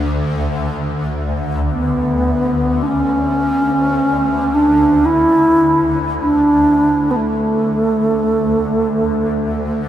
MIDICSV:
0, 0, Header, 1, 4, 480
1, 0, Start_track
1, 0, Tempo, 500000
1, 9490, End_track
2, 0, Start_track
2, 0, Title_t, "Crotales"
2, 0, Program_c, 0, 9
2, 0, Note_on_c, 0, 104, 45
2, 3661, Note_off_c, 0, 104, 0
2, 9490, End_track
3, 0, Start_track
3, 0, Title_t, "Bass flute"
3, 0, Program_c, 1, 73
3, 1640, Note_on_c, 1, 59, 63
3, 2715, Note_on_c, 1, 62, 51
3, 2729, Note_off_c, 1, 59, 0
3, 2751, Note_on_c, 1, 61, 82
3, 2766, Note_off_c, 1, 62, 0
3, 4363, Note_on_c, 1, 62, 71
3, 4378, Note_off_c, 1, 61, 0
3, 4854, Note_on_c, 1, 64, 81
3, 4869, Note_off_c, 1, 62, 0
3, 5731, Note_off_c, 1, 64, 0
3, 5969, Note_on_c, 1, 62, 80
3, 6825, Note_on_c, 1, 59, 37
3, 6839, Note_off_c, 1, 62, 0
3, 6877, Note_on_c, 1, 57, 67
3, 6891, Note_off_c, 1, 59, 0
3, 9490, Note_off_c, 1, 57, 0
3, 9490, End_track
4, 0, Start_track
4, 0, Title_t, "Ambient pad"
4, 0, Program_c, 2, 92
4, 0, Note_on_c, 2, 38, 56
4, 6044, Note_off_c, 2, 38, 0
4, 6055, Note_on_c, 2, 38, 66
4, 9490, Note_off_c, 2, 38, 0
4, 9490, End_track
0, 0, End_of_file